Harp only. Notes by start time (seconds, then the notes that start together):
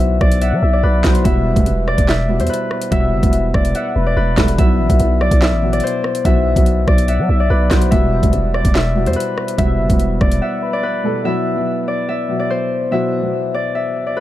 Already playing: C5 D5 E5
0.21 D5
0.42 E5
0.73 D5
0.83 B4
1.24 E5
1.88 D5
2.08 E5
2.40 C5
2.49 B4
2.92 E5
3.54 D5
3.75 E5
4.06 D5
4.17 B4
4.58 E5
5.21 D5
5.42 E5
5.73 D5
5.84 C5
6.25 E5
6.88 D5
7.08 E5
7.40 D5
7.50 B4
7.91 E5
8.55 D5
8.75 E5
9.07 C5
9.16 B4
9.58 E5
10.21 D5
10.42 E5
10.73 D5
10.83 B4
11.25 E5
11.88 D5
12.09 E5
12.39 D5
12.50 C5
12.92 E5
13.54 D5
13.75 E5
14.07 D5
14.17 B4